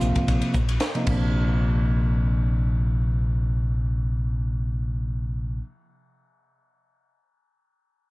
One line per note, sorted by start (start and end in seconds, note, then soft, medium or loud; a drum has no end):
0.00 0.13 A#1 medium
0.00 0.53 C3 medium
0.00 0.53 F3 medium
0.00 0.53 A#3 medium
0.00 0.53 F4 medium
0.00 hi-hat pedal medium
0.15 muted fingered electric bass stroke soft
0.15 kick medium
0.15 ride soft
0.28 0.40 A#1 medium
0.28 kick medium
0.28 hi-hat pedal medium
0.28 ride medium
0.41 ride soft
0.54 0.76 A#1 medium
0.54 kick medium
0.54 hi-hat pedal medium
0.69 ride medium
0.80 snare medium
0.80 hi-hat pedal medium
0.80 ride medium
0.94 1.02 C3 medium
0.94 1.05 F3 medium
0.94 1.07 A#3 medium
0.94 1.08 D#4 medium
0.94 ride soft
1.04 5.60 A#1 medium
1.04 5.56 C3 medium
1.04 5.58 F3 soft
1.04 kick medium
1.04 crash medium
1.08 5.61 A#3 soft
1.08 5.63 D4 medium